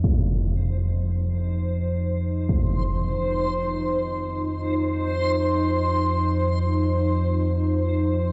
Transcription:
0.00 8.32 D#4 medium
0.00 8.32 F4 medium
0.00 8.32 C5 medium
0.00 impact medium
0.05 8.32 F2 medium
0.05 8.32 F3 medium
0.05 8.32 C5 medium
2.49 impact medium

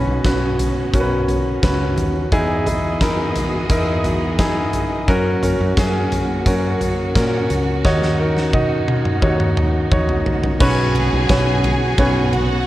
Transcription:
0.00 0.55 B2 medium
0.00 2.29 B3 medium
0.00 0.25 C#4 medium
0.00 2.29 C#4 medium
0.00 0.25 F#4 medium
0.00 2.28 F#4 medium
0.00 0.25 B4 loud
0.07 0.23 B1 medium
0.24 0.90 B1 medium
0.24 0.78 C#4 medium
0.24 0.78 F#4 medium
0.24 0.78 B4 medium
0.24 kick loud
0.24 snare medium
0.24 closed hi-hat medium
0.59 closed hi-hat medium
0.59 floor tom medium
0.94 1.59 B1 medium
0.94 1.47 C#4 medium
0.94 1.47 F#4 medium
0.94 1.00 A#4 medium
0.94 kick medium
0.94 closed hi-hat medium
1.00 1.50 B4 medium
1.28 closed hi-hat medium
1.28 floor tom soft
1.63 1.95 C#2 medium
1.63 2.16 C#4 medium
1.63 2.16 F#4 medium
1.63 2.16 B4 medium
1.63 kick loud
1.63 snare loud
1.63 closed hi-hat medium
1.97 2.29 D#2 medium
1.97 closed hi-hat medium
1.97 floor tom medium
2.31 3.66 E2 medium
2.31 5.05 E3 medium
2.31 3.32 E3 medium
2.31 5.05 B3 medium
2.31 2.59 D#4 loud
2.31 2.59 E4 medium
2.31 5.05 F#4 medium
2.31 5.05 G#4 medium
2.31 2.59 G#4 loud
2.31 5.05 D#5 medium
2.31 kick loud
2.31 closed hi-hat medium
2.66 2.93 D#4 medium
2.66 2.93 E4 medium
2.66 2.93 G#4 medium
2.66 closed hi-hat medium
2.66 floor tom medium
3.01 3.54 D#4 medium
3.01 3.54 E4 medium
3.01 3.54 A#4 medium
3.01 kick loud
3.01 snare loud
3.01 closed hi-hat medium
3.35 closed hi-hat medium
3.35 floor tom medium
3.70 4.70 E2 medium
3.70 4.23 D#4 medium
3.70 4.23 E4 medium
3.70 4.23 A#4 medium
3.70 kick loud
3.70 closed hi-hat medium
4.04 closed hi-hat medium
4.04 floor tom medium
4.39 4.92 D#4 medium
4.39 4.93 E4 medium
4.39 4.93 G#4 medium
4.39 kick loud
4.39 snare loud
4.39 closed hi-hat medium
4.73 closed hi-hat medium
4.73 floor tom medium
5.08 5.56 F#2 loud
5.08 7.82 A#3 medium
5.08 5.35 C#4 medium
5.08 10.57 C#4 medium
5.08 5.35 F#4 loud
5.08 10.57 F#4 medium
5.08 5.35 A#4 loud
5.08 kick loud
5.08 closed hi-hat medium
5.43 5.69 C#4 medium
5.43 5.69 F#4 medium
5.43 5.70 A#4 medium
5.43 closed hi-hat medium
5.43 floor tom medium
5.60 5.76 F#2 medium
5.77 6.42 F#2 medium
5.77 6.31 C#4 medium
5.77 6.31 F#4 medium
5.77 6.31 G#4 medium
5.77 kick loud
5.77 snare loud
5.77 closed hi-hat medium
6.12 closed hi-hat medium
6.12 floor tom medium
6.46 7.11 F#2 medium
6.46 7.00 C#4 medium
6.46 7.00 F#4 medium
6.46 7.00 A#4 medium
6.46 kick loud
6.46 closed hi-hat medium
6.81 closed hi-hat medium
6.81 floor tom medium
7.15 7.48 A#2 medium
7.15 7.68 C#4 medium
7.15 7.69 F#4 medium
7.15 7.69 A#4 medium
7.15 kick loud
7.15 snare loud
7.15 closed hi-hat medium
7.50 7.82 C#2 medium
7.50 closed hi-hat medium
7.85 9.19 D#2 medium
7.85 8.84 D#3 medium
7.85 10.58 D#4 medium
7.85 8.11 D#4 loud
7.85 8.11 F#4 medium
7.85 8.11 C#5 loud
7.85 kick loud
7.85 snare medium
8.02 snare soft
8.19 8.46 D#4 medium
8.19 8.46 F#4 medium
8.19 8.46 A#4 medium
8.37 snare soft
8.53 9.07 D#4 medium
8.53 9.07 F#4 medium
8.53 9.07 D#5 medium
8.53 kick loud
8.53 high tom medium
8.88 high tom medium
9.05 mid tom medium
9.22 10.22 D#2 loud
9.22 9.76 D#4 medium
9.22 9.76 F#4 medium
9.22 9.76 C#5 medium
9.22 kick loud
9.40 mid tom medium
9.57 mid tom medium
9.91 10.45 D#4 medium
9.91 10.45 F#4 medium
9.91 10.45 C#5 medium
9.91 kick loud
9.91 mid tom medium
10.09 floor tom medium
10.26 floor tom medium
10.44 floor tom medium
10.60 11.09 B1 loud
10.60 11.60 B2 medium
10.60 12.67 B3 medium
10.60 11.14 C#4 loud
10.60 12.67 C#4 medium
10.60 11.14 F#4 medium
10.60 12.67 F#4 medium
10.60 12.30 G#4 medium
10.60 11.14 B4 medium
10.60 11.14 C#5 loud
10.60 12.30 G#5 medium
10.60 kick loud
10.60 crash loud
10.95 floor tom medium
10.95 ride medium
11.13 11.29 B1 medium
11.29 11.94 B1 medium
11.29 11.83 C#4 medium
11.29 11.83 F#4 medium
11.29 11.83 B4 medium
11.29 11.83 C#5 medium
11.29 kick loud
11.29 snare loud
11.29 ride medium
11.64 floor tom medium
11.64 ride medium
11.98 12.63 B1 loud
11.98 12.52 C#4 medium
11.98 12.52 F#4 medium
11.98 12.52 B4 medium
11.98 12.52 C#5 medium
11.98 kick loud
11.98 ride medium
12.33 12.67 F#4 medium
12.33 12.67 F#5 medium
12.33 floor tom medium
12.33 ride medium

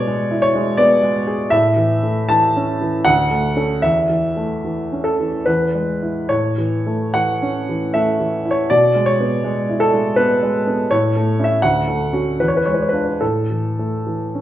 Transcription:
0.00 1.44 B2 medium
0.00 0.07 G#3 soft
0.00 0.21 B3 soft
0.00 0.40 C#5 medium
0.00 0.77 D5 medium
0.07 0.45 G#3 soft
0.31 0.69 E4 soft
0.42 0.78 C#5 medium
0.55 0.93 G#3 soft
0.77 1.17 B3 medium
0.77 1.51 D5 medium
1.03 1.42 G#3 soft
1.27 1.51 G#4 soft
1.50 3.03 A2 medium
1.50 2.30 E5 medium
1.76 2.20 E3 soft
2.03 2.46 A3 soft
2.29 2.71 E3 soft
2.29 3.06 A5 medium
2.57 2.97 C#4 soft
2.81 3.07 E3 soft
3.05 3.80 D2 medium
3.05 3.82 F#5 medium
3.31 3.72 A3 soft
3.56 3.80 C#4 soft
3.56 3.80 A4 soft
3.82 5.43 E2 soft
3.82 5.06 E5 medium
4.09 4.53 E3 soft
4.37 4.81 A3 soft
4.65 5.09 E3 soft
4.92 5.36 C#4 soft
5.04 5.46 A4 medium
5.20 5.47 E3 soft
5.46 6.26 E2 soft
5.46 6.28 B4 medium
5.75 6.18 G#3 soft
6.02 6.27 E4 soft
6.29 8.66 A2 soft
6.29 7.15 C#5 medium
6.58 7.04 E3 soft
6.87 7.32 A3 soft
7.14 7.58 E3 soft
7.14 7.93 F#5 medium
7.42 7.84 C#4 soft
7.69 8.10 E3 soft
7.94 8.35 A3 soft
7.94 8.51 E5 medium
8.20 8.60 E3 soft
8.45 8.70 E4 soft
8.51 8.70 C#5 medium
8.70 10.88 B2 soft
8.70 9.07 D5 medium
8.95 9.35 G#3 soft
9.06 9.81 C#5 medium
9.20 9.60 B3 soft
9.44 9.84 G#3 soft
9.69 10.09 E4 soft
9.80 10.17 A4 medium
9.94 10.33 G#3 soft
10.16 10.57 B3 soft
10.16 10.91 B4 medium
10.43 10.82 G#3 soft
10.67 10.92 B3 soft
10.91 11.62 A2 medium
10.91 11.45 C#5 medium
11.17 11.55 A3 soft
11.39 11.61 C#4 soft
11.39 11.61 E4 soft
11.44 11.63 E5 medium
11.62 12.37 D2 soft
11.62 12.39 F#5 medium
11.88 12.29 A3 soft
12.13 12.37 C#4 soft
12.13 12.37 F#4 soft
12.40 13.19 E2 soft
12.40 12.48 B4 medium
12.48 12.56 C#5 medium
12.57 12.65 B4 medium
12.65 13.11 G#3 soft
12.65 12.73 C#5 medium
12.74 12.82 B4 medium
12.82 12.90 C#5 soft
12.89 13.21 B4 medium
12.93 13.18 D4 soft
12.93 13.19 F4 soft
13.21 14.41 A2 soft
13.21 14.41 A4 medium
13.51 13.96 E3 soft
13.79 14.24 A3 soft
14.07 14.41 E3 soft
14.35 14.41 C#4 soft

